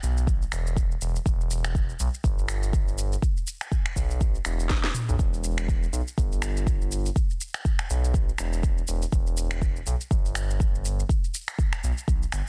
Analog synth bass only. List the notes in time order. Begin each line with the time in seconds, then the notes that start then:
0.03 B1
0.27 A1
0.53 E1
1.01 E1
1.26 E1
2.00 B1
2.24 G1
3.96 B1
4.21 A1
4.46 E1
5.09 B1
5.19 E1
5.93 B1
6.18 G1
7.90 B1
8.14 A1
8.39 E1
8.88 E1
9.13 E1
9.87 B1
10.11 G1
11.84 B1
12.08 B1
12.33 G1